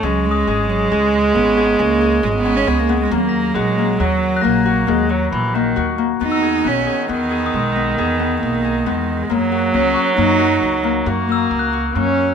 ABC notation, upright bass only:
X:1
M:7/4
L:1/8
Q:1/4=136
K:Elyd
V:1 name="Upright bass" clef=bass
C,,2 G,,,2 C,,2 G,,,2 C,,2 G,,,2 C,,2 | D,,2 A,,,2 D,,2 A,,,2 D,,2 A,,,2 D,,2 | E,,2 B,,, z E,,2 B,,,2 E,,2 B,,,2 E,,2 | F,,2 C,, z F,,2 C,,2 F,,2 C,,2 F,,2 |]